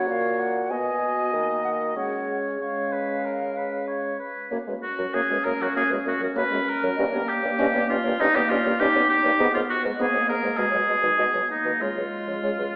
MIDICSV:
0, 0, Header, 1, 6, 480
1, 0, Start_track
1, 0, Key_signature, 6, "major"
1, 0, Tempo, 628931
1, 1496, Time_signature, 4, 2, 24, 8
1, 4393, Tempo, 609137
1, 6313, Tempo, 595829
1, 8233, Tempo, 616650
1, 9932, End_track
2, 0, Start_track
2, 0, Title_t, "Flute"
2, 0, Program_c, 0, 73
2, 72, Note_on_c, 0, 77, 62
2, 299, Note_on_c, 0, 78, 61
2, 310, Note_off_c, 0, 77, 0
2, 537, Note_on_c, 0, 80, 67
2, 548, Note_off_c, 0, 78, 0
2, 1249, Note_off_c, 0, 80, 0
2, 1253, Note_on_c, 0, 78, 51
2, 1308, Note_off_c, 0, 78, 0
2, 1499, Note_on_c, 0, 78, 56
2, 1810, Note_off_c, 0, 78, 0
2, 1983, Note_on_c, 0, 77, 42
2, 3172, Note_off_c, 0, 77, 0
2, 3441, Note_on_c, 0, 73, 69
2, 3487, Note_off_c, 0, 73, 0
2, 3574, Note_on_c, 0, 71, 43
2, 3619, Note_off_c, 0, 71, 0
2, 3803, Note_on_c, 0, 70, 43
2, 3849, Note_off_c, 0, 70, 0
2, 3928, Note_on_c, 0, 73, 65
2, 3974, Note_off_c, 0, 73, 0
2, 4055, Note_on_c, 0, 71, 53
2, 4101, Note_off_c, 0, 71, 0
2, 4165, Note_on_c, 0, 73, 48
2, 4211, Note_off_c, 0, 73, 0
2, 4287, Note_on_c, 0, 70, 50
2, 4333, Note_off_c, 0, 70, 0
2, 4390, Note_on_c, 0, 73, 72
2, 4437, Note_off_c, 0, 73, 0
2, 4508, Note_on_c, 0, 71, 47
2, 4555, Note_off_c, 0, 71, 0
2, 4624, Note_on_c, 0, 73, 57
2, 4672, Note_off_c, 0, 73, 0
2, 4747, Note_on_c, 0, 70, 52
2, 4794, Note_off_c, 0, 70, 0
2, 4862, Note_on_c, 0, 73, 74
2, 4910, Note_off_c, 0, 73, 0
2, 5001, Note_on_c, 0, 71, 52
2, 5048, Note_off_c, 0, 71, 0
2, 5234, Note_on_c, 0, 70, 70
2, 5281, Note_off_c, 0, 70, 0
2, 5342, Note_on_c, 0, 75, 76
2, 5389, Note_off_c, 0, 75, 0
2, 5460, Note_on_c, 0, 73, 54
2, 5507, Note_off_c, 0, 73, 0
2, 5702, Note_on_c, 0, 73, 50
2, 5749, Note_off_c, 0, 73, 0
2, 5837, Note_on_c, 0, 75, 75
2, 5885, Note_off_c, 0, 75, 0
2, 5959, Note_on_c, 0, 73, 58
2, 6007, Note_off_c, 0, 73, 0
2, 6075, Note_on_c, 0, 75, 54
2, 6122, Note_off_c, 0, 75, 0
2, 6185, Note_on_c, 0, 73, 62
2, 6233, Note_off_c, 0, 73, 0
2, 6316, Note_on_c, 0, 75, 78
2, 6364, Note_off_c, 0, 75, 0
2, 6428, Note_on_c, 0, 73, 58
2, 6477, Note_off_c, 0, 73, 0
2, 6544, Note_on_c, 0, 75, 58
2, 6593, Note_off_c, 0, 75, 0
2, 6671, Note_on_c, 0, 73, 57
2, 6719, Note_off_c, 0, 73, 0
2, 6793, Note_on_c, 0, 75, 77
2, 6841, Note_off_c, 0, 75, 0
2, 6918, Note_on_c, 0, 73, 55
2, 6966, Note_off_c, 0, 73, 0
2, 7145, Note_on_c, 0, 73, 70
2, 7194, Note_off_c, 0, 73, 0
2, 7274, Note_on_c, 0, 75, 67
2, 7322, Note_off_c, 0, 75, 0
2, 7397, Note_on_c, 0, 73, 49
2, 7445, Note_off_c, 0, 73, 0
2, 7631, Note_on_c, 0, 71, 51
2, 7680, Note_off_c, 0, 71, 0
2, 7733, Note_on_c, 0, 75, 72
2, 7781, Note_off_c, 0, 75, 0
2, 7865, Note_on_c, 0, 73, 46
2, 7913, Note_off_c, 0, 73, 0
2, 7982, Note_on_c, 0, 75, 46
2, 8031, Note_off_c, 0, 75, 0
2, 8109, Note_on_c, 0, 71, 46
2, 8158, Note_off_c, 0, 71, 0
2, 8226, Note_on_c, 0, 75, 76
2, 8273, Note_off_c, 0, 75, 0
2, 8328, Note_on_c, 0, 73, 49
2, 8374, Note_off_c, 0, 73, 0
2, 8456, Note_on_c, 0, 75, 44
2, 8502, Note_off_c, 0, 75, 0
2, 8570, Note_on_c, 0, 71, 45
2, 8617, Note_off_c, 0, 71, 0
2, 8699, Note_on_c, 0, 75, 62
2, 8746, Note_off_c, 0, 75, 0
2, 8823, Note_on_c, 0, 73, 39
2, 8870, Note_off_c, 0, 73, 0
2, 9070, Note_on_c, 0, 71, 40
2, 9117, Note_off_c, 0, 71, 0
2, 9191, Note_on_c, 0, 73, 51
2, 9238, Note_off_c, 0, 73, 0
2, 9321, Note_on_c, 0, 71, 31
2, 9368, Note_off_c, 0, 71, 0
2, 9564, Note_on_c, 0, 68, 34
2, 9611, Note_off_c, 0, 68, 0
2, 9675, Note_on_c, 0, 73, 48
2, 9722, Note_off_c, 0, 73, 0
2, 9794, Note_on_c, 0, 71, 38
2, 9840, Note_off_c, 0, 71, 0
2, 9932, End_track
3, 0, Start_track
3, 0, Title_t, "Oboe"
3, 0, Program_c, 1, 68
3, 0, Note_on_c, 1, 73, 60
3, 510, Note_off_c, 1, 73, 0
3, 550, Note_on_c, 1, 75, 52
3, 1481, Note_off_c, 1, 75, 0
3, 1497, Note_on_c, 1, 73, 43
3, 1977, Note_off_c, 1, 73, 0
3, 1988, Note_on_c, 1, 73, 50
3, 2229, Note_on_c, 1, 71, 44
3, 2240, Note_off_c, 1, 73, 0
3, 2474, Note_on_c, 1, 70, 44
3, 2486, Note_off_c, 1, 71, 0
3, 2720, Note_on_c, 1, 71, 41
3, 2731, Note_off_c, 1, 70, 0
3, 2953, Note_off_c, 1, 71, 0
3, 2958, Note_on_c, 1, 73, 42
3, 3194, Note_off_c, 1, 73, 0
3, 3199, Note_on_c, 1, 71, 36
3, 3438, Note_off_c, 1, 71, 0
3, 3683, Note_on_c, 1, 66, 73
3, 3920, Note_on_c, 1, 68, 75
3, 3931, Note_off_c, 1, 66, 0
3, 4156, Note_on_c, 1, 70, 76
3, 4168, Note_off_c, 1, 68, 0
3, 4288, Note_on_c, 1, 66, 73
3, 4300, Note_off_c, 1, 70, 0
3, 4395, Note_off_c, 1, 66, 0
3, 4399, Note_on_c, 1, 68, 79
3, 4507, Note_off_c, 1, 68, 0
3, 4646, Note_on_c, 1, 66, 71
3, 4752, Note_off_c, 1, 66, 0
3, 4879, Note_on_c, 1, 71, 87
3, 5125, Note_on_c, 1, 70, 75
3, 5137, Note_off_c, 1, 71, 0
3, 5599, Note_on_c, 1, 67, 92
3, 5610, Note_off_c, 1, 70, 0
3, 6076, Note_off_c, 1, 67, 0
3, 6081, Note_on_c, 1, 65, 89
3, 6320, Note_on_c, 1, 63, 104
3, 6332, Note_off_c, 1, 65, 0
3, 6441, Note_on_c, 1, 67, 90
3, 6453, Note_off_c, 1, 63, 0
3, 6554, Note_on_c, 1, 65, 92
3, 6567, Note_off_c, 1, 67, 0
3, 6801, Note_on_c, 1, 67, 87
3, 6813, Note_off_c, 1, 65, 0
3, 7035, Note_off_c, 1, 67, 0
3, 7040, Note_on_c, 1, 67, 92
3, 7394, Note_off_c, 1, 67, 0
3, 7398, Note_on_c, 1, 65, 75
3, 7452, Note_off_c, 1, 65, 0
3, 7524, Note_on_c, 1, 66, 88
3, 7630, Note_off_c, 1, 66, 0
3, 7778, Note_on_c, 1, 68, 72
3, 8000, Note_off_c, 1, 68, 0
3, 8003, Note_on_c, 1, 70, 78
3, 8229, Note_on_c, 1, 68, 84
3, 8241, Note_off_c, 1, 70, 0
3, 8944, Note_off_c, 1, 68, 0
3, 8950, Note_on_c, 1, 63, 58
3, 9195, Note_on_c, 1, 65, 64
3, 9206, Note_off_c, 1, 63, 0
3, 9932, Note_off_c, 1, 65, 0
3, 9932, End_track
4, 0, Start_track
4, 0, Title_t, "Clarinet"
4, 0, Program_c, 2, 71
4, 0, Note_on_c, 2, 66, 58
4, 510, Note_off_c, 2, 66, 0
4, 537, Note_on_c, 2, 66, 52
4, 1474, Note_off_c, 2, 66, 0
4, 1496, Note_on_c, 2, 61, 43
4, 1974, Note_off_c, 2, 61, 0
4, 1979, Note_on_c, 2, 61, 46
4, 3176, Note_off_c, 2, 61, 0
4, 3447, Note_on_c, 2, 58, 54
4, 3553, Note_off_c, 2, 58, 0
4, 3689, Note_on_c, 2, 61, 67
4, 5325, Note_off_c, 2, 61, 0
4, 5356, Note_on_c, 2, 58, 79
4, 6295, Note_off_c, 2, 58, 0
4, 6313, Note_on_c, 2, 58, 78
4, 6803, Note_on_c, 2, 63, 84
4, 6815, Note_off_c, 2, 58, 0
4, 7291, Note_on_c, 2, 59, 73
4, 7303, Note_off_c, 2, 63, 0
4, 7767, Note_on_c, 2, 58, 68
4, 7779, Note_off_c, 2, 59, 0
4, 8244, Note_on_c, 2, 56, 57
4, 8256, Note_off_c, 2, 58, 0
4, 8545, Note_off_c, 2, 56, 0
4, 8711, Note_on_c, 2, 59, 54
4, 8954, Note_on_c, 2, 58, 48
4, 8966, Note_off_c, 2, 59, 0
4, 9200, Note_on_c, 2, 56, 52
4, 9211, Note_off_c, 2, 58, 0
4, 9932, Note_off_c, 2, 56, 0
4, 9932, End_track
5, 0, Start_track
5, 0, Title_t, "French horn"
5, 0, Program_c, 3, 60
5, 0, Note_on_c, 3, 58, 60
5, 542, Note_on_c, 3, 59, 45
5, 554, Note_off_c, 3, 58, 0
5, 1021, Note_on_c, 3, 58, 41
5, 1032, Note_off_c, 3, 59, 0
5, 1494, Note_off_c, 3, 58, 0
5, 1498, Note_on_c, 3, 56, 41
5, 1977, Note_off_c, 3, 56, 0
5, 1989, Note_on_c, 3, 56, 45
5, 3181, Note_off_c, 3, 56, 0
5, 3440, Note_on_c, 3, 58, 63
5, 3495, Note_off_c, 3, 58, 0
5, 3563, Note_on_c, 3, 56, 38
5, 3616, Note_off_c, 3, 56, 0
5, 3807, Note_on_c, 3, 54, 45
5, 3859, Note_off_c, 3, 54, 0
5, 3926, Note_on_c, 3, 58, 63
5, 3978, Note_off_c, 3, 58, 0
5, 4043, Note_on_c, 3, 56, 42
5, 4096, Note_off_c, 3, 56, 0
5, 4171, Note_on_c, 3, 58, 52
5, 4221, Note_off_c, 3, 58, 0
5, 4276, Note_on_c, 3, 54, 46
5, 4329, Note_off_c, 3, 54, 0
5, 4397, Note_on_c, 3, 58, 67
5, 4450, Note_off_c, 3, 58, 0
5, 4509, Note_on_c, 3, 56, 52
5, 4564, Note_off_c, 3, 56, 0
5, 4635, Note_on_c, 3, 58, 54
5, 4689, Note_off_c, 3, 58, 0
5, 4743, Note_on_c, 3, 54, 52
5, 4800, Note_off_c, 3, 54, 0
5, 4866, Note_on_c, 3, 58, 70
5, 4922, Note_off_c, 3, 58, 0
5, 4985, Note_on_c, 3, 56, 63
5, 5041, Note_off_c, 3, 56, 0
5, 5238, Note_on_c, 3, 54, 61
5, 5291, Note_off_c, 3, 54, 0
5, 5357, Note_on_c, 3, 61, 69
5, 5410, Note_off_c, 3, 61, 0
5, 5478, Note_on_c, 3, 59, 53
5, 5531, Note_off_c, 3, 59, 0
5, 5710, Note_on_c, 3, 58, 55
5, 5765, Note_off_c, 3, 58, 0
5, 5834, Note_on_c, 3, 61, 86
5, 5888, Note_off_c, 3, 61, 0
5, 5955, Note_on_c, 3, 59, 58
5, 6009, Note_off_c, 3, 59, 0
5, 6076, Note_on_c, 3, 61, 67
5, 6129, Note_off_c, 3, 61, 0
5, 6200, Note_on_c, 3, 58, 59
5, 6252, Note_off_c, 3, 58, 0
5, 6318, Note_on_c, 3, 61, 72
5, 6372, Note_off_c, 3, 61, 0
5, 6441, Note_on_c, 3, 59, 64
5, 6494, Note_off_c, 3, 59, 0
5, 6569, Note_on_c, 3, 61, 62
5, 6620, Note_off_c, 3, 61, 0
5, 6691, Note_on_c, 3, 58, 59
5, 6742, Note_off_c, 3, 58, 0
5, 6813, Note_on_c, 3, 61, 75
5, 6864, Note_off_c, 3, 61, 0
5, 6930, Note_on_c, 3, 59, 70
5, 6981, Note_off_c, 3, 59, 0
5, 7164, Note_on_c, 3, 58, 54
5, 7217, Note_off_c, 3, 58, 0
5, 7286, Note_on_c, 3, 59, 79
5, 7339, Note_off_c, 3, 59, 0
5, 7412, Note_on_c, 3, 58, 52
5, 7463, Note_off_c, 3, 58, 0
5, 7650, Note_on_c, 3, 56, 54
5, 7701, Note_off_c, 3, 56, 0
5, 7769, Note_on_c, 3, 59, 79
5, 7819, Note_off_c, 3, 59, 0
5, 7875, Note_on_c, 3, 58, 40
5, 7928, Note_off_c, 3, 58, 0
5, 7991, Note_on_c, 3, 59, 54
5, 8045, Note_off_c, 3, 59, 0
5, 8112, Note_on_c, 3, 56, 51
5, 8166, Note_off_c, 3, 56, 0
5, 8233, Note_on_c, 3, 56, 60
5, 8286, Note_off_c, 3, 56, 0
5, 8346, Note_on_c, 3, 54, 49
5, 8400, Note_off_c, 3, 54, 0
5, 8471, Note_on_c, 3, 56, 50
5, 8523, Note_off_c, 3, 56, 0
5, 8585, Note_on_c, 3, 51, 49
5, 8639, Note_off_c, 3, 51, 0
5, 8698, Note_on_c, 3, 56, 54
5, 8754, Note_off_c, 3, 56, 0
5, 8830, Note_on_c, 3, 54, 45
5, 8884, Note_off_c, 3, 54, 0
5, 9060, Note_on_c, 3, 51, 46
5, 9117, Note_off_c, 3, 51, 0
5, 9185, Note_on_c, 3, 56, 59
5, 9241, Note_off_c, 3, 56, 0
5, 9310, Note_on_c, 3, 54, 34
5, 9365, Note_off_c, 3, 54, 0
5, 9549, Note_on_c, 3, 53, 38
5, 9603, Note_off_c, 3, 53, 0
5, 9671, Note_on_c, 3, 56, 57
5, 9725, Note_off_c, 3, 56, 0
5, 9778, Note_on_c, 3, 54, 29
5, 9836, Note_off_c, 3, 54, 0
5, 9902, Note_on_c, 3, 56, 37
5, 9932, Note_off_c, 3, 56, 0
5, 9932, End_track
6, 0, Start_track
6, 0, Title_t, "Bassoon"
6, 0, Program_c, 4, 70
6, 63, Note_on_c, 4, 46, 54
6, 545, Note_on_c, 4, 47, 47
6, 556, Note_off_c, 4, 46, 0
6, 1014, Note_on_c, 4, 51, 41
6, 1026, Note_off_c, 4, 47, 0
6, 1495, Note_off_c, 4, 51, 0
6, 1500, Note_on_c, 4, 49, 43
6, 3175, Note_off_c, 4, 49, 0
6, 3449, Note_on_c, 4, 42, 65
6, 3501, Note_off_c, 4, 42, 0
6, 3574, Note_on_c, 4, 42, 44
6, 3625, Note_off_c, 4, 42, 0
6, 3800, Note_on_c, 4, 42, 45
6, 3854, Note_off_c, 4, 42, 0
6, 3919, Note_on_c, 4, 42, 68
6, 3973, Note_off_c, 4, 42, 0
6, 4042, Note_on_c, 4, 42, 43
6, 4094, Note_off_c, 4, 42, 0
6, 4159, Note_on_c, 4, 42, 51
6, 4211, Note_off_c, 4, 42, 0
6, 4285, Note_on_c, 4, 42, 53
6, 4336, Note_off_c, 4, 42, 0
6, 4400, Note_on_c, 4, 42, 65
6, 4453, Note_off_c, 4, 42, 0
6, 4519, Note_on_c, 4, 42, 51
6, 4572, Note_off_c, 4, 42, 0
6, 4636, Note_on_c, 4, 42, 53
6, 4690, Note_off_c, 4, 42, 0
6, 4765, Note_on_c, 4, 42, 52
6, 4817, Note_off_c, 4, 42, 0
6, 4880, Note_on_c, 4, 42, 73
6, 4933, Note_off_c, 4, 42, 0
6, 5006, Note_on_c, 4, 42, 54
6, 5057, Note_off_c, 4, 42, 0
6, 5246, Note_on_c, 4, 42, 60
6, 5297, Note_off_c, 4, 42, 0
6, 5367, Note_on_c, 4, 43, 82
6, 5418, Note_off_c, 4, 43, 0
6, 5490, Note_on_c, 4, 43, 56
6, 5540, Note_off_c, 4, 43, 0
6, 5725, Note_on_c, 4, 43, 55
6, 5776, Note_off_c, 4, 43, 0
6, 5850, Note_on_c, 4, 43, 87
6, 5900, Note_off_c, 4, 43, 0
6, 5964, Note_on_c, 4, 43, 54
6, 6016, Note_off_c, 4, 43, 0
6, 6087, Note_on_c, 4, 43, 59
6, 6138, Note_off_c, 4, 43, 0
6, 6217, Note_on_c, 4, 43, 65
6, 6266, Note_off_c, 4, 43, 0
6, 6325, Note_on_c, 4, 43, 78
6, 6377, Note_off_c, 4, 43, 0
6, 6445, Note_on_c, 4, 43, 59
6, 6497, Note_off_c, 4, 43, 0
6, 6566, Note_on_c, 4, 43, 62
6, 6618, Note_off_c, 4, 43, 0
6, 6689, Note_on_c, 4, 43, 58
6, 6740, Note_off_c, 4, 43, 0
6, 6805, Note_on_c, 4, 43, 77
6, 6858, Note_off_c, 4, 43, 0
6, 6926, Note_on_c, 4, 43, 57
6, 6979, Note_off_c, 4, 43, 0
6, 7163, Note_on_c, 4, 43, 59
6, 7216, Note_off_c, 4, 43, 0
6, 7286, Note_on_c, 4, 44, 78
6, 7339, Note_off_c, 4, 44, 0
6, 7407, Note_on_c, 4, 44, 56
6, 7460, Note_off_c, 4, 44, 0
6, 7648, Note_on_c, 4, 44, 52
6, 7699, Note_off_c, 4, 44, 0
6, 7768, Note_on_c, 4, 44, 76
6, 7819, Note_off_c, 4, 44, 0
6, 7883, Note_on_c, 4, 44, 46
6, 7935, Note_off_c, 4, 44, 0
6, 8007, Note_on_c, 4, 44, 51
6, 8058, Note_off_c, 4, 44, 0
6, 8127, Note_on_c, 4, 44, 53
6, 8178, Note_off_c, 4, 44, 0
6, 8244, Note_on_c, 4, 47, 61
6, 8294, Note_off_c, 4, 47, 0
6, 8362, Note_on_c, 4, 47, 46
6, 8412, Note_off_c, 4, 47, 0
6, 8478, Note_on_c, 4, 47, 48
6, 8529, Note_off_c, 4, 47, 0
6, 8589, Note_on_c, 4, 47, 48
6, 8642, Note_off_c, 4, 47, 0
6, 8712, Note_on_c, 4, 47, 61
6, 8765, Note_off_c, 4, 47, 0
6, 8832, Note_on_c, 4, 47, 42
6, 8885, Note_off_c, 4, 47, 0
6, 9070, Note_on_c, 4, 47, 42
6, 9124, Note_off_c, 4, 47, 0
6, 9198, Note_on_c, 4, 49, 54
6, 9251, Note_off_c, 4, 49, 0
6, 9320, Note_on_c, 4, 49, 38
6, 9372, Note_off_c, 4, 49, 0
6, 9555, Note_on_c, 4, 49, 38
6, 9609, Note_off_c, 4, 49, 0
6, 9681, Note_on_c, 4, 49, 51
6, 9733, Note_off_c, 4, 49, 0
6, 9804, Note_on_c, 4, 49, 35
6, 9856, Note_off_c, 4, 49, 0
6, 9932, End_track
0, 0, End_of_file